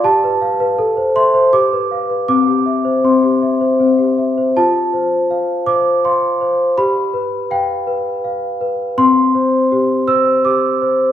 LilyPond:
\new Staff \with { instrumentName = "Celesta" } { \time 3/4 \key c \major \tempo 4 = 81 << { a''4. c'''8 d'''4 | d'''4 c'''4. r8 | a''4. d'''8 c'''4 | b''4 g''4. r8 |
c'''4. e'''8 d'''4 | } \\ { g'16 b'16 f''16 b'16 a'16 c''16 e''16 c''16 g'16 b'16 f''16 b'16 | c'16 g'16 e''16 c''16 c'16 g'16 e''16 c''16 c'16 g'16 e''16 c''16 | f'8 c''8 f''8 c''8 f''8 c''8 | g'8 b'8 f''8 b'8 f''8 b'8 |
c'8 c''8 g'8 c''8 g'8 c''8 | } >> }